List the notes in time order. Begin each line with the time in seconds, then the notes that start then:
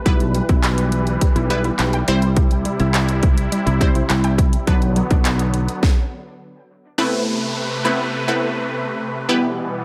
Already playing: B4
0.05 B1 E3 G3 B3 E4 B4, kick, closed hi-hat
0.20 closed hi-hat
0.35 G3, closed hi-hat
0.49 B1 E4, kick, closed hi-hat
0.64 clap, closed hi-hat
0.78 closed hi-hat
0.92 closed hi-hat
1.07 closed hi-hat
1.21 G3, kick, closed hi-hat
1.36 B1 E4, closed hi-hat
1.50 G3 B3 E4 B4, closed hi-hat
1.64 E4, closed hi-hat
1.79 B1, clap, closed hi-hat
1.93 G5, closed hi-hat
2.08 C2 C3 G3 C4 E4 C5, closed hi-hat
2.22 closed hi-hat
2.36 G3, kick, closed hi-hat
2.51 closed hi-hat
2.65 G3, closed hi-hat
2.80 C2 E4, closed hi-hat
2.94 clap, closed hi-hat
3.09 closed hi-hat
3.23 kick, closed hi-hat
3.38 closed hi-hat
3.52 G3, closed hi-hat
3.66 C2 E4, closed hi-hat
3.81 G3 C4 E4 C5, kick, closed hi-hat
3.95 E4, closed hi-hat
4.10 C2, clap, closed hi-hat
4.24 G5, closed hi-hat
4.38 E4, kick, closed hi-hat
4.53 closed hi-hat
4.67 B1 D3 F#3 B3 D4 B4, kick, closed hi-hat
4.82 closed hi-hat
4.96 F#3, closed hi-hat
5.11 B1 D4, kick, closed hi-hat
5.25 clap, closed hi-hat
5.39 closed hi-hat
5.54 closed hi-hat
5.68 closed hi-hat
5.83 kick, snare
6.98 C3 A3 B3 C4 E4 B4, downlifter
7.85 A3 B3 C4 E4 B4
8.28 A3 B3 C4 E4 B4
9.29 B2 E3 G3 B3 E4 G4 B4